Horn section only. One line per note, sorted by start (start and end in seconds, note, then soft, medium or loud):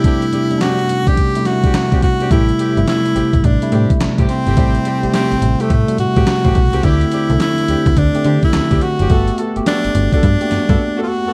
0.04 0.23 C4 medium
0.04 0.23 D4 medium
0.04 0.23 G4 loud
0.32 0.51 C4 medium
0.32 0.51 D4 medium
0.32 0.52 G4 medium
0.60 0.80 C4 medium
0.60 0.80 D4 medium
0.60 0.80 G4 medium
1.07 1.19 C4 medium
1.07 1.19 D4 medium
1.07 1.19 G4 medium
1.63 1.76 C4 medium
1.63 1.76 D4 medium
1.63 1.76 G4 medium
1.92 2.04 C4 medium
1.92 2.04 D4 medium
1.92 2.04 G4 medium
2.20 2.29 C4 medium
2.20 2.33 D4 medium
2.20 2.30 G4 medium
2.30 2.50 A3 medium
2.30 2.50 C4 medium
2.30 2.50 G4 medium
2.59 2.78 A3 medium
2.59 2.78 C4 medium
2.59 2.78 G4 medium
3.15 3.34 A3 medium
3.15 3.35 C4 medium
3.15 3.35 G4 medium
3.72 3.91 A3 medium
3.72 3.91 C4 medium
3.72 3.91 G4 medium
4.18 4.30 A3 medium
4.18 4.31 C4 medium
4.18 4.31 G4 medium
4.46 4.55 A3 medium
4.46 4.55 C4 medium
4.46 4.56 G4 medium
4.56 4.76 A3 medium
4.56 4.76 C4 medium
4.56 4.76 G4 loud
4.85 5.04 A3 medium
4.85 5.04 C4 medium
4.85 5.04 G4 medium
5.13 5.33 A3 medium
5.13 5.33 C4 medium
5.13 5.33 G4 medium
5.59 5.72 A3 medium
5.59 5.72 C4 medium
5.59 5.72 G4 medium
6.16 6.29 A3 medium
6.16 6.29 C4 medium
6.16 6.29 G4 medium
6.44 6.57 A3 medium
6.44 6.57 C4 medium
6.44 6.57 G4 medium
6.73 6.85 A3 medium
6.73 6.82 C4 medium
6.73 6.82 G4 medium
6.83 7.02 C4 medium
6.83 7.02 D4 medium
6.83 7.03 G4 loud
7.11 7.31 C4 medium
7.11 7.31 D4 medium
7.11 7.31 G4 medium
7.68 7.87 C4 medium
7.68 7.87 D4 medium
7.68 7.87 G4 medium
8.25 8.44 C4 medium
8.25 8.44 D4 medium
8.25 8.44 G4 medium
8.71 8.83 C4 medium
8.71 8.83 D4 medium
8.71 8.84 G4 medium
8.99 9.12 C4 medium
8.99 9.12 D4 medium
8.99 9.12 G4 medium
9.10 9.29 B3 medium
9.10 9.29 F#4 medium
9.10 9.29 A4 loud
9.38 9.57 B3 medium
9.38 9.57 F#4 medium
9.38 9.57 A4 medium
9.66 9.85 B3 medium
9.66 9.85 F#4 medium
9.66 9.86 A4 medium
10.12 10.25 B3 medium
10.12 10.25 F#4 medium
10.12 10.25 A4 medium
10.69 10.81 B3 medium
10.69 10.81 F#4 medium
10.69 10.82 A4 medium
10.97 11.10 B3 medium
10.97 11.10 F#4 medium
10.97 11.10 A4 medium
11.25 11.33 B3 medium
11.25 11.33 F#4 medium
11.25 11.33 A4 medium